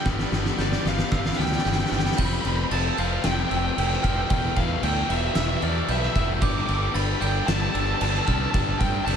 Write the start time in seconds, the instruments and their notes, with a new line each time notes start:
Already playing: clean electric guitar B3 D4 G4, string section D4 G4 B4, glockenspiel F6
0.05 fingered electric bass G1, distorted electric guitar G3 B3 D4 G4, clean electric guitar G3, string section A5, kick, snare
0.12 distorted electric guitar G3 B3 D4 G4
0.19 distorted electric guitar G3 B3 D4 G4, snare
0.28 fingered electric bass G1, distorted electric guitar G3 B3 D4 G4
0.32 distorted electric guitar G3 B3, snare
0.36 distorted electric guitar D4 G4
0.44 distorted electric guitar G3 B3 D4 G4, snare
0.51 distorted electric guitar G3 B3 D4 G4
0.58 fingered electric bass G1, distorted electric guitar G3 B3 D4 G4, clean electric guitar G4, lead electric guitar D5, glockenspiel G6, snare
0.66 distorted electric guitar G3 B3 D4 G4
0.72 distorted electric guitar G3 B3 D4 G4, snare
0.81 distorted electric guitar G3 B3 D4 G4
0.85 fingered electric bass G1, distorted electric guitar G3 B3 D4, clean electric guitar B3, lead electric guitar F5, snare
0.90 distorted electric guitar G4
0.95 distorted electric guitar G3 B3 D4 G4, lead electric guitar F5, snare
1.03 distorted electric guitar G3 B3 D4 G4, lead electric guitar F5
1.10 fingered electric bass G1, distorted electric guitar G3 B3 D4 G4, clean electric guitar D4, lead electric guitar F5, glockenspiel E6, kick, snare
1.18 distorted electric guitar G3 B3 D4 G4, lead electric guitar F5
1.25 distorted electric guitar G3 B3 D4 G4, lead electric guitar F5, snare
1.32 distorted electric guitar G3 B3 D4 G4, lead electric guitar F5, snare
1.37 fingered electric bass D2, clean electric guitar G3, distorted electric guitar G3, lead electric guitar G5, glockenspiel F6, snare
1.42 distorted electric guitar B3 D4 G4, lead electric guitar G5, snare
1.49 distorted electric guitar G3 B3 D4 G4, lead electric guitar G5, snare
1.57 distorted electric guitar G3 B3 D4 G4, lead electric guitar G5, snare
1.64 fingered electric bass G1, distorted electric guitar G3 B3 D4 G4, clean electric guitar D4, lead electric guitar G5, glockenspiel G6, snare
1.72 distorted electric guitar G3 B3 D4 G4, lead electric guitar G5, snare
1.79 distorted electric guitar G3 B3 D4 G4, snare
1.84 distorted electric guitar G3 D4, lead electric guitar G5, snare
1.88 fingered electric bass G1, distorted electric guitar B3 G4, clean electric guitar B3, lead electric guitar G5, snare
1.94 distorted electric guitar G3 B3 D4 G4
1.99 distorted electric guitar D4, lead electric guitar G5, snare
2.03 distorted electric guitar G3 B3 G4, lead electric guitar G5, snare
2.09 distorted electric guitar G3 B3 D4 G4, snare
2.17 fingered electric bass F1, distorted electric guitar F2 C3 F3, string section A3 F4 C5 G5, lead electric guitar B5, glockenspiel G6, kick, crash
2.25 lead electric guitar B5
2.33 lead electric guitar B5
2.41 fingered electric bass F1, distorted electric guitar F2 C3 F3, lead electric guitar B5, crash
2.49 lead electric guitar B5
2.56 lead electric guitar B5
2.64 lead electric guitar B5
2.71 fingered electric bass F1, distorted electric guitar F2 C3 F3, lead electric guitar A5, glockenspiel A6, crash
2.97 fingered electric bass F1, distorted electric guitar F2 C3 F3, lead electric guitar F5, glockenspiel G6, crash
3.24 fingered electric bass F1, distorted electric guitar F2 C3 F3, lead electric guitar G5, snare, crash
3.33 lead electric guitar G5
3.40 lead electric guitar G5
3.49 fingered electric bass F1, distorted electric guitar F2 C3 F3, lead electric guitar G5, glockenspiel E6, crash
3.57 lead electric guitar G5
3.64 lead electric guitar G5
3.72 lead electric guitar G5
3.77 fingered electric bass F1, distorted electric guitar F2 C3 F3, lead electric guitar G5, crash
3.87 lead electric guitar G5
3.92 lead electric guitar G5, snare
4.03 fingered electric bass F1, distorted electric guitar F2 C3 F3, lead electric guitar G5, glockenspiel F6, kick, crash
4.11 lead electric guitar G5
4.19 lead electric guitar G5
4.29 fingered electric bass E1, distorted electric guitar E2 B2 E3, string section G3 E4 B4, lead electric guitar G5, kick, crash
4.56 distorted electric guitar E2 B2 E3, fingered electric bass E2, lead electric guitar F5, kick, crash
4.83 fingered electric bass D2, distorted electric guitar E2 B2 E3, lead electric guitar G5, glockenspiel G6, crash
5.09 fingered electric bass E1, distorted electric guitar E2 B2 E3, lead electric guitar E5, crash
5.17 lead electric guitar E5
5.25 lead electric guitar E5
5.32 fingered electric bass E1, distorted electric guitar E2 B2, lead electric guitar E5, glockenspiel E6, snare, crash
5.37 distorted electric guitar E3, lead electric guitar E5
5.48 lead electric guitar E5
5.57 lead electric guitar E5
5.62 fingered electric bass E2, distorted electric guitar E2 B2 E3, lead electric guitar D5, glockenspiel F6, crash
5.88 fingered electric bass B1, distorted electric guitar E2 B2 E3, lead electric guitar E5, glockenspiel G6, crash
5.98 lead electric guitar E5, snare
6.05 lead electric guitar E5
6.13 fingered electric bass F1, distorted electric guitar E2 B2 E3, lead electric guitar E5, kick, crash
6.19 lead electric guitar E5
6.41 fingered electric bass G1, distorted electric guitar G2 D3 G3, string section D4, lead electric guitar D6, glockenspiel G6, kick, crash
6.50 lead electric guitar D6
6.59 lead electric guitar D6
6.67 fingered electric bass G1, distorted electric guitar G2 D3 G3, lead electric guitar D6, crash
6.74 lead electric guitar D6
6.83 lead electric guitar D6
6.94 fingered electric bass G1, distorted electric guitar G2 D3 G3, lead electric guitar B5, glockenspiel A6, crash
7.20 fingered electric bass G1, distorted electric guitar G2 D3 G3, lead electric guitar G5, glockenspiel G6, crash
7.46 fingered electric bass G1, distorted electric guitar G2 D3 G3, lead electric guitar A5, snare, crash
7.54 lead electric guitar A5
7.62 lead electric guitar A5
7.70 distorted electric guitar G2 D3, lead electric guitar A5
7.74 fingered electric bass G1, distorted electric guitar G3, glockenspiel E6, crash
7.79 lead electric guitar A5
7.86 lead electric guitar A5
7.94 lead electric guitar A5
7.99 fingered electric bass G1, distorted electric guitar G2 D3 G3, lead electric guitar A5, crash
8.10 lead electric guitar A5
8.14 snare
8.19 lead electric guitar A5
8.25 fingered electric bass C2, distorted electric guitar G2 D3 G3, lead electric guitar A5, glockenspiel F6, kick, crash
8.34 lead electric guitar A5
8.42 lead electric guitar A5
8.51 fingered electric bass G1, distorted electric guitar G2 D3 G3, lead electric guitar A5, kick, crash
8.79 distorted electric guitar G2 D3 G3, fingered electric bass G2, lead electric guitar G5, kick, crash
9.05 fingered electric bass F1, distorted electric guitar G2 D3 G3, lead electric guitar A5, glockenspiel G6, crash